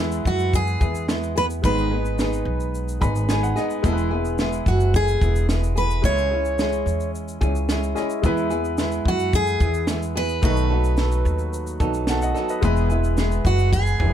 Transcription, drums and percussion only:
0.12 shaker
0.25 kick, shaker
0.39 shaker
0.53 kick, shaker
0.67 shaker
0.81 kick, shaker
0.95 shaker
1.09 snare, shaker
1.23 shaker
1.37 snare, shaker
1.50 shaker
1.64 kick, shaker
1.78 shaker
2.05 shaker
2.18 snare, shaker
2.33 shaker
2.60 shaker
2.75 shaker
2.88 shaker
3.02 kick, shaker
3.16 shaker
3.29 snare, shaker
3.44 shaker
3.57 snare, shaker
3.70 shaker
3.84 kick, shaker
3.98 shaker
4.25 shaker
4.38 snare, shaker
4.53 shaker
4.66 kick, shaker
4.80 shaker
4.94 kick, shaker
5.08 shaker
5.21 kick, shaker
5.36 shaker
5.49 snare, shaker
5.63 shaker
5.77 shaker
5.90 shaker
6.04 kick, shaker
6.18 shaker
6.45 shaker
6.59 snare, shaker
6.73 shaker
6.87 shaker
7.00 shaker
7.15 shaker
7.28 shaker
7.41 kick, shaker
7.55 shaker
7.69 snare, shaker
7.83 shaker
7.96 snare, shaker
8.10 shaker
8.24 kick, shaker
8.37 shaker
8.50 shaker
8.65 shaker
8.78 snare, shaker
8.92 shaker
9.05 kick
9.19 shaker
9.33 kick, shaker
9.47 shaker
9.60 kick, shaker
9.74 shaker
9.87 snare, shaker
10.02 shaker
10.16 snare
10.29 shaker
10.43 kick, shaker
10.57 shaker
10.84 shaker
10.97 snare, shaker
11.11 shaker
11.26 shaker
11.39 shaker
11.53 shaker
11.67 shaker
11.80 kick, shaker
11.94 shaker
12.07 snare, shaker
12.22 shaker
12.36 snare, shaker
12.49 shaker
12.63 kick, shaker
12.76 shaker
12.90 shaker
13.04 shaker
13.17 snare, shaker
13.32 shaker
13.45 kick, shaker
13.58 shaker
13.73 kick, shaker
13.86 shaker
14.00 kick

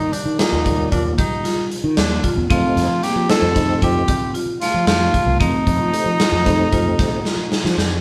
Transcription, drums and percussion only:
0.13 closed hi-hat
0.39 snare, closed hi-hat
0.66 kick, closed hi-hat
0.92 kick, closed hi-hat
1.18 kick, closed hi-hat
1.45 snare, closed hi-hat
1.71 closed hi-hat
1.97 snare, closed hi-hat
2.24 kick, closed hi-hat
2.50 kick, closed hi-hat
2.77 snare, closed hi-hat
3.03 snare, closed hi-hat
3.30 snare, closed hi-hat
3.56 kick, snare, closed hi-hat
3.82 kick, closed hi-hat
4.08 kick, closed hi-hat
4.35 closed hi-hat
4.61 snare, closed hi-hat
4.87 snare, closed hi-hat
5.14 kick, closed hi-hat
5.41 kick, closed hi-hat
5.67 kick, closed hi-hat
5.94 closed hi-hat
6.20 snare, closed hi-hat
6.46 kick, snare, closed hi-hat
6.72 kick, closed hi-hat
6.99 kick, snare, closed hi-hat
7.25 snare
7.52 snare
7.65 snare
7.78 snare

